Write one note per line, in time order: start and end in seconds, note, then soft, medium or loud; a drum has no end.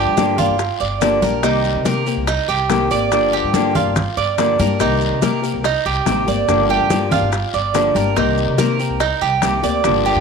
0.00 0.15 D3 medium
0.00 0.16 F3 medium
0.00 0.16 A#3 medium
0.00 0.17 D4 medium
0.00 0.17 G4 medium
0.00 0.37 G4 medium
0.06 0.46 G2 loud
0.17 0.37 D3 medium
0.17 0.37 F3 medium
0.17 0.37 A#3 medium
0.17 0.37 D4 medium
0.17 0.36 G4 medium
0.17 high bongo medium
0.17 high conga medium
0.17 short guiro medium
0.17 maracas medium
0.37 0.58 A#3 soft
0.37 0.58 D4 soft
0.37 0.79 F4 medium
0.37 0.58 G4 medium
0.37 high bongo soft
0.37 high conga soft
0.37 low conga medium
0.37 short guiro medium
0.37 maracas soft
0.48 0.69 G1 medium
0.58 muted nylon-string guitar stroke medium
0.58 high bongo medium
0.58 high conga soft
0.58 long guiro medium
0.58 maracas medium
0.80 1.20 G1 medium
0.80 1.21 D5 medium
0.80 high bongo soft
0.80 high conga soft
0.80 maracas soft
1.01 1.21 D3 medium
1.01 1.21 F3 medium
1.01 1.22 A#3 medium
1.01 1.22 D4 medium
1.01 1.21 G4 medium
1.01 high bongo medium
1.01 low bongo medium
1.01 high conga soft
1.01 short guiro medium
1.01 maracas medium
1.22 1.43 A#1 medium
1.22 1.42 A#3 soft
1.22 1.43 D4 soft
1.22 1.42 G4 medium
1.22 1.43 A#4 medium
1.22 high conga medium
1.22 short guiro medium
1.22 maracas soft
1.42 1.73 C2 loud
1.42 1.83 C3 medium
1.42 1.84 D#3 medium
1.42 1.84 A#3 medium
1.42 1.84 C4 medium
1.42 1.84 D#4 medium
1.42 1.85 G4 medium
1.42 high bongo medium
1.42 high conga soft
1.42 long guiro medium
1.42 maracas medium
1.64 high bongo soft
1.64 high conga soft
1.64 maracas soft
1.75 2.15 C3 loud
1.84 2.05 C3 medium
1.84 2.05 D#3 medium
1.84 2.06 A#3 medium
1.84 2.06 C4 medium
1.84 2.05 G4 medium
1.84 2.26 A#4 medium
1.84 high bongo medium
1.84 high conga loud
1.84 short guiro medium
1.84 maracas medium
2.06 2.27 A#3 soft
2.06 2.27 C4 soft
2.06 2.27 G4 soft
2.06 high bongo soft
2.06 short guiro medium
2.06 maracas soft
2.17 2.37 C2 medium
2.27 2.48 D#4 medium
2.27 muted nylon-string guitar stroke medium
2.27 high bongo medium
2.27 high conga soft
2.27 long guiro medium
2.27 maracas medium
2.48 2.89 C2 medium
2.48 2.89 G4 medium
2.48 high bongo soft
2.48 high conga soft
2.48 maracas soft
2.69 2.90 C3 medium
2.69 2.90 D#3 medium
2.69 2.90 A#3 medium
2.69 2.90 C4 medium
2.69 2.90 G4 medium
2.69 high bongo medium
2.69 low bongo medium
2.69 high conga medium
2.69 short guiro medium
2.69 maracas medium
2.91 3.12 G#1 medium
2.91 3.11 A#3 medium
2.91 3.12 C4 soft
2.91 3.11 G4 medium
2.91 3.32 D5 medium
2.91 short guiro medium
2.91 maracas soft
3.12 3.42 G1 loud
3.12 3.53 D3 medium
3.12 3.53 F3 medium
3.12 3.53 A#3 medium
3.12 3.54 D4 medium
3.12 3.54 G4 medium
3.12 high bongo medium
3.12 high conga soft
3.12 long guiro medium
3.12 maracas medium
3.33 3.74 G4 medium
3.33 high bongo soft
3.33 high conga soft
3.33 maracas soft
3.43 3.83 G2 loud
3.54 3.74 D3 medium
3.54 3.74 F3 medium
3.54 3.75 A#3 medium
3.54 3.74 D4 medium
3.54 3.74 G4 medium
3.54 high bongo medium
3.54 high conga loud
3.54 short guiro medium
3.54 maracas medium
3.75 3.95 A#3 soft
3.75 3.95 D4 soft
3.75 4.16 F4 medium
3.75 3.95 G4 soft
3.75 high bongo soft
3.75 high conga soft
3.75 low conga medium
3.75 short guiro medium
3.75 maracas soft
3.86 4.06 G1 loud
3.96 muted nylon-string guitar stroke medium
3.96 high bongo medium
3.96 high conga soft
3.96 low conga medium
3.96 long guiro medium
3.96 maracas medium
4.17 4.57 G1 medium
4.17 4.58 D5 medium
4.17 high bongo soft
4.17 high conga soft
4.17 maracas soft
4.37 4.58 D3 medium
4.37 4.58 F3 medium
4.37 4.58 A#3 medium
4.37 4.58 D4 medium
4.37 4.57 G4 medium
4.37 high bongo medium
4.37 low bongo medium
4.37 high conga soft
4.37 short guiro medium
4.37 maracas medium
4.58 4.81 G2 medium
4.58 4.79 A#3 soft
4.58 4.80 D4 medium
4.58 4.79 G4 soft
4.58 4.80 A#4 medium
4.58 high conga medium
4.58 short guiro medium
4.58 maracas soft
4.79 5.10 C2 medium
4.79 5.20 C3 medium
4.79 5.21 D#3 medium
4.79 5.21 A#3 medium
4.79 5.21 C4 medium
4.79 5.21 D#4 medium
4.79 5.22 G4 medium
4.79 high bongo medium
4.79 high conga soft
4.79 long guiro medium
4.79 maracas medium
5.01 high bongo soft
5.01 high conga soft
5.01 maracas soft
5.12 5.52 C3 medium
5.21 5.42 C3 medium
5.21 5.42 D#3 medium
5.21 5.42 A#3 medium
5.21 5.42 C4 medium
5.21 5.41 G4 medium
5.21 5.63 A#4 medium
5.21 high bongo medium
5.21 high conga loud
5.21 short guiro medium
5.21 maracas medium
5.42 5.63 A#3 soft
5.42 5.63 C4 soft
5.42 5.63 G4 soft
5.42 high bongo soft
5.42 short guiro medium
5.42 maracas soft
5.54 5.74 C2 medium
5.64 5.85 D#4 medium
5.64 muted nylon-string guitar stroke medium
5.64 high bongo medium
5.64 high conga soft
5.64 long guiro medium
5.64 maracas medium
5.85 6.05 C2 medium
5.85 6.26 G4 medium
5.85 high bongo soft
5.85 high conga soft
5.85 maracas soft
6.06 6.25 A1 medium
6.06 6.26 C3 medium
6.06 6.26 D#3 medium
6.06 6.27 A#3 medium
6.06 6.26 C4 medium
6.06 6.25 G4 medium
6.06 high bongo medium
6.06 low bongo medium
6.06 high conga medium
6.06 short guiro medium
6.06 maracas medium
6.27 6.48 G1 medium
6.27 6.47 A#3 soft
6.27 6.48 C4 soft
6.27 6.47 G4 medium
6.27 6.68 D5 medium
6.27 high conga medium
6.27 short guiro medium
6.27 maracas soft
6.48 6.78 G1 loud
6.48 6.88 D3 medium
6.48 6.88 F3 medium
6.48 6.89 A#3 medium
6.48 6.89 D4 medium
6.48 6.89 G4 medium
6.48 high bongo medium
6.48 high conga soft
6.48 long guiro medium
6.48 maracas medium
6.70 7.10 G4 medium
6.70 high bongo soft
6.70 high conga soft
6.70 maracas soft
6.80 7.20 G2 medium
6.89 7.10 D3 medium
6.89 7.10 F3 medium
6.89 7.10 A#3 medium
6.89 7.10 D4 medium
6.89 7.09 G4 medium
6.89 high bongo medium
6.89 high conga loud
6.89 short guiro medium
6.89 maracas medium
7.11 7.31 A#3 soft
7.11 7.31 D4 soft
7.11 7.52 F4 medium
7.11 7.31 G4 medium
7.11 high bongo soft
7.11 high conga soft
7.11 low conga medium
7.11 short guiro medium
7.11 maracas soft
7.22 7.42 G1 medium
7.31 muted nylon-string guitar stroke medium
7.31 high bongo medium
7.31 high conga soft
7.31 long guiro medium
7.31 maracas medium
7.53 7.93 G1 medium
7.53 7.94 D5 medium
7.53 high bongo soft
7.53 high conga soft
7.53 maracas soft
7.74 7.94 D3 medium
7.74 7.95 F3 medium
7.74 7.95 A#3 medium
7.74 7.95 D4 medium
7.74 7.94 G4 medium
7.74 high bongo medium
7.74 low bongo medium
7.74 high conga soft
7.74 short guiro medium
7.74 maracas medium
7.95 8.18 G1 medium
7.95 8.16 A#3 soft
7.95 8.16 D4 soft
7.95 8.15 G4 medium
7.95 8.16 A#4 medium
7.95 high conga medium
7.95 short guiro medium
7.95 maracas soft
8.16 8.46 C2 loud
8.16 8.56 C3 medium
8.16 8.57 D#3 medium
8.16 8.57 A#3 medium
8.16 8.57 C4 medium
8.16 8.57 D#4 medium
8.16 8.58 G4 medium
8.16 high bongo medium
8.16 high conga soft
8.16 long guiro medium
8.16 maracas medium
8.37 high bongo soft
8.37 high conga soft
8.37 maracas soft
8.48 8.88 C3 loud
8.57 8.78 C3 medium
8.57 8.78 D#3 medium
8.57 8.79 A#3 medium
8.57 8.79 C4 medium
8.57 8.78 G4 medium
8.57 8.99 A#4 medium
8.57 high bongo medium
8.57 high conga medium
8.57 short guiro medium
8.57 maracas medium
8.79 9.00 A#3 soft
8.79 9.00 C4 soft
8.79 8.99 G4 soft
8.79 high bongo soft
8.79 short guiro medium
8.79 maracas soft
8.90 9.10 C2 medium
9.00 9.21 D#4 medium
9.00 muted nylon-string guitar stroke medium
9.00 high bongo medium
9.00 high conga soft
9.00 long guiro medium
9.00 maracas medium
9.21 9.61 C2 medium
9.21 9.62 G4 medium
9.21 high bongo soft
9.21 high conga soft
9.21 maracas soft
9.42 9.62 C3 medium
9.42 9.63 D#3 medium
9.42 9.63 A#3 medium
9.42 9.62 C4 medium
9.42 9.61 G4 medium
9.42 high bongo medium
9.42 low bongo medium
9.42 high conga medium
9.42 short guiro medium
9.42 maracas medium
9.63 9.86 D2 medium
9.63 9.83 A#3 soft
9.63 9.84 C4 medium
9.63 9.83 G4 medium
9.63 10.04 D5 medium
9.63 short guiro medium
9.63 maracas soft
9.84 10.14 G1 loud
9.84 10.20 D3 medium
9.84 10.20 F3 medium
9.84 10.20 A#3 medium
9.84 10.20 D4 medium
9.84 10.20 G4 medium
9.84 high bongo medium
9.84 high conga soft
9.84 long guiro medium
9.84 maracas medium
10.05 10.20 G4 medium
10.05 high bongo soft
10.05 high conga soft
10.05 maracas soft
10.16 10.20 G2 medium